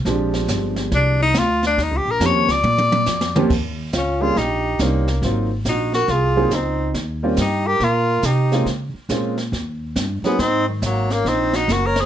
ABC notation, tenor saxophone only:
X:1
M:4/4
L:1/16
Q:"Swing" 1/4=139
K:Ebmix
V:1 name="Tenor saxophone"
z8 =D2 E2 F2 D2 | (3E2 G2 B2 d2 =d8- d z | z4 D2 F2 E4 B,4 | z4 E2 _G2 F4 C4 |
z4 E2 G2 F4 E4 | z12 z2 _C2 | C2 E,2 _G,2 B,2 C2 E2 (3_G2 B2 A2 |]